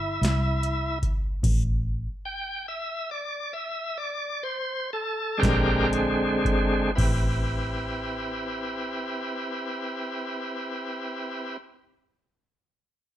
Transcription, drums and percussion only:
0.23 snare, closed hi-hat
0.63 closed hi-hat
1.03 kick, closed hi-hat
1.43 kick, closed hi-hat, crash
5.43 kick, snare, closed hi-hat
5.93 closed hi-hat
6.45 kick, closed hi-hat
6.98 kick, crash

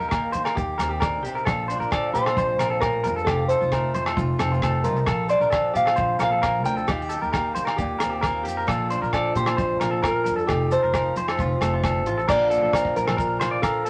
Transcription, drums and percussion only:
0.02 maracas
0.11 kick, cross-stick, low agogo, maracas
0.33 closed hi-hat, maracas
0.45 cross-stick, low agogo, maracas
0.57 kick, maracas
0.79 cross-stick, closed hi-hat, low agogo, maracas
1.01 kick, cross-stick, low agogo, maracas
1.25 closed hi-hat, maracas
1.37 maracas
1.46 kick, cross-stick, low agogo, maracas
1.70 closed hi-hat, maracas
1.82 maracas
1.92 kick, cross-stick, low agogo, maracas
2.15 closed hi-hat, maracas
2.26 cross-stick, low agogo, maracas
2.37 kick, maracas
2.59 cross-stick, closed hi-hat, low agogo, maracas
2.82 kick, cross-stick, low agogo, maracas
3.04 closed hi-hat, maracas
3.18 maracas
3.27 kick, cross-stick, low agogo, maracas
3.49 closed hi-hat, maracas
3.61 maracas
3.72 kick, cross-stick, low agogo, maracas
3.94 closed hi-hat, maracas
4.06 cross-stick, low agogo, maracas
4.17 kick, maracas
4.39 cross-stick, closed hi-hat, low agogo, maracas
4.53 maracas
4.62 kick, cross-stick, low agogo, maracas
4.84 closed hi-hat, maracas
4.96 maracas
5.07 kick, cross-stick, low agogo, maracas
5.29 closed hi-hat, maracas
5.41 maracas
5.52 kick, cross-stick, low agogo, maracas
5.75 closed hi-hat, maracas
5.86 cross-stick, low agogo, maracas
5.96 kick, maracas
6.19 cross-stick, closed hi-hat, low agogo, maracas
6.43 kick, cross-stick, low agogo, maracas
6.65 closed hi-hat, maracas
6.77 maracas
6.88 kick, cross-stick, low agogo, maracas
7.10 closed hi-hat, maracas
7.23 maracas
7.33 kick, cross-stick, low agogo, maracas
7.56 closed hi-hat, maracas
7.67 cross-stick, low agogo, maracas
7.78 kick, maracas
8.00 cross-stick, closed hi-hat, low agogo, maracas
8.23 kick, cross-stick, low agogo, maracas
8.45 closed hi-hat, maracas
8.59 maracas
8.68 kick, cross-stick, low agogo, maracas
8.90 closed hi-hat, maracas
9.03 maracas
9.13 kick, cross-stick, low agogo, maracas
9.35 closed hi-hat, maracas
9.46 cross-stick, low agogo
9.58 kick, maracas
9.81 cross-stick, closed hi-hat, low agogo, maracas
10.04 kick, cross-stick, low agogo, maracas
10.26 closed hi-hat, maracas
10.39 maracas
10.49 kick, cross-stick, low agogo, maracas
10.71 closed hi-hat, maracas
10.83 maracas
10.94 kick, cross-stick, low agogo, maracas
11.16 closed hi-hat, maracas
11.28 cross-stick, low agogo, maracas
11.39 kick, maracas
11.61 cross-stick, closed hi-hat, low agogo, maracas
11.84 kick, cross-stick, low agogo, maracas
12.06 closed hi-hat
12.19 maracas
12.29 kick, cross-stick, crash, low agogo, maracas
12.51 closed hi-hat, maracas
12.73 kick, cross-stick, low agogo, maracas
12.85 kick
12.96 closed hi-hat, maracas
13.08 cross-stick, low agogo
13.18 kick, maracas
13.41 cross-stick, closed hi-hat, low agogo, maracas
13.63 kick, cross-stick, low agogo, maracas
13.86 closed hi-hat, maracas

